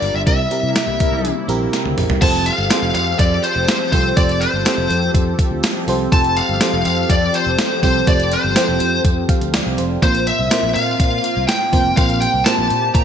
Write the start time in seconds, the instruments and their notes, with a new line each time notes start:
Already playing: fm electric piano G2 D4 F4 G4 A#4, analog synth pad G3 D4 F4 A#4, lead electric guitar D5
0.02 fretless electric bass G1, open hi-hat, tambourine
0.14 fretless electric bass G1, lead electric guitar E5
0.26 fretless electric bass C2, fm electric piano C3 C4 E4 G4 A#4, analog synth pad C3 A#3 E4, lead electric guitar E5, kick, closed hi-hat, tambourine
0.51 fm electric piano C4 E4 G4 A#4, closed hi-hat, tambourine
0.63 fretless electric bass C3, analog polysynth G3 E4 A#4
0.75 snare, closed hi-hat, tambourine
0.87 fretless electric bass C2
1.00 analog polysynth G3 E4 A#4, kick, closed hi-hat, tambourine
1.12 fretless electric bass C2
1.25 closed hi-hat
1.48 fretless electric bass A#1, fm electric piano C4 E4 G4 A#4, closed hi-hat, tambourine
1.73 snare, closed hi-hat, tambourine
1.85 fretless electric bass D2, high tom
1.97 fretless electric bass A#1, mid tom, open hi-hat, tambourine
2.09 fretless electric bass C2, floor tom
2.21 fretless electric bass F1, analog synth pad F3 C4 G4 A4, fm electric piano C4 F4 G4 A4 C5, lead electric guitar A5, kick, closed hi-hat, crash, tambourine
2.34 closed hi-hat
2.46 lead electric guitar F5, closed hi-hat, tambourine
2.58 fretless electric bass G1
2.70 fm electric piano C4 F4 G4 G#4 C5, snare, closed hi-hat, tambourine
2.77 fm electric piano A4
2.82 fretless electric bass F1
2.94 fretless electric bass F2, lead electric guitar F5, closed hi-hat, tambourine
3.19 fretless electric bass F2, lead electric guitar D5, kick, closed hi-hat, tambourine
3.43 lead electric guitar C5, closed hi-hat, tambourine
3.56 fretless electric bass F1
3.68 snare, closed hi-hat, tambourine
3.92 fretless electric bass C2, fm electric piano C4 F4 G4 A4 C5, lead electric guitar C5, kick, open hi-hat
4.17 fretless electric bass F1, fm electric piano C4 F4 G4 A4 C5, lead electric guitar D5, kick, closed hi-hat, tambourine
4.29 closed hi-hat
4.41 lead electric guitar C5, closed hi-hat, tambourine
4.53 fretless electric bass G1
4.65 fm electric piano C4 F4 G4 A4 C5, snare, closed hi-hat, tambourine
4.78 fretless electric bass F1
4.89 fretless electric bass F2, closed hi-hat, tambourine
5.14 fretless electric bass F2, kick, closed hi-hat, tambourine
5.39 kick, closed hi-hat, tambourine
5.51 fretless electric bass D2
5.63 snare, closed hi-hat, tambourine
5.87 fretless electric bass C2, fm electric piano C4 F4 G4 A4 C5, open hi-hat, tambourine
6.12 fretless electric bass F1, fm electric piano C4 F4 G4 A4 C5, lead electric guitar A5, kick, closed hi-hat, tambourine
6.24 closed hi-hat
6.37 lead electric guitar F5, closed hi-hat, tambourine
6.49 fretless electric bass G1
6.61 fm electric piano C4 F4 G4 A4 C5, snare, closed hi-hat, tambourine
6.73 fretless electric bass F1
6.85 fretless electric bass F2, lead electric guitar F5, closed hi-hat, tambourine
7.10 fretless electric bass F2, lead electric guitar D5, kick, closed hi-hat
7.34 lead electric guitar C5, closed hi-hat, tambourine
7.46 fretless electric bass F1
7.58 snare, closed hi-hat, tambourine
7.83 fretless electric bass C2, fm electric piano C4 F4 G4 A4 C5, lead electric guitar C5, kick, open hi-hat, tambourine
8.07 fretless electric bass F1, fm electric piano C4 F4 G4 A4 C5, lead electric guitar D5, kick, closed hi-hat, tambourine
8.20 closed hi-hat
8.32 lead electric guitar C5, closed hi-hat, tambourine
8.44 fretless electric bass G1
8.56 fm electric piano C4 F4 G4 A4 C5, snare, closed hi-hat, tambourine
8.68 fretless electric bass F1
8.80 fretless electric bass F2, closed hi-hat, tambourine
9.04 fretless electric bass F2, kick, closed hi-hat
9.29 fm electric piano F5, kick, closed hi-hat, tambourine
9.41 fretless electric bass D2, closed hi-hat
9.54 fm electric piano D5, snare, closed hi-hat, tambourine
9.66 fretless electric bass C2
9.78 fretless electric bass F1, fm electric piano C5, closed hi-hat, tambourine
10.02 fretless electric bass A#1, fm electric piano A#2 A#3 C4 F4 A#4 C5, analog synth pad A#3 F4, lead electric guitar C5, kick, closed hi-hat, tambourine
10.15 closed hi-hat
10.27 lead electric guitar E5, closed hi-hat, tambourine
10.39 fretless electric bass C2
10.50 fm electric piano A#3 C4 F4 A#4 C5, snare, closed hi-hat, tambourine
10.63 fretless electric bass A#1
10.74 fretless electric bass A#2, lead electric guitar F5, closed hi-hat, tambourine
11.00 fretless electric bass A#2, kick, closed hi-hat
11.24 closed hi-hat, tambourine
11.36 fretless electric bass C2
11.48 lead electric guitar G5, snare, closed hi-hat, tambourine
11.72 fretless electric bass F1, fm electric piano A#3 C4 F4 A#4 C5, kick, open hi-hat, tambourine
11.96 fretless electric bass A#1, fm electric piano A#2 A#3 C4 F4 A#4 C5, analog synth pad G4, lead electric guitar F5, kick, closed hi-hat, tambourine
12.10 closed hi-hat
12.20 lead electric guitar G5, closed hi-hat, tambourine
12.34 fretless electric bass C2
12.45 fm electric piano A#3 C4 F4 A#4 C5, lead electric guitar A5, snare, closed hi-hat, tambourine
12.58 fretless electric bass A#1
12.70 fretless electric bass A#2, closed hi-hat, tambourine
12.94 fretless electric bass A#2, lead electric guitar A#5, kick, closed hi-hat, tambourine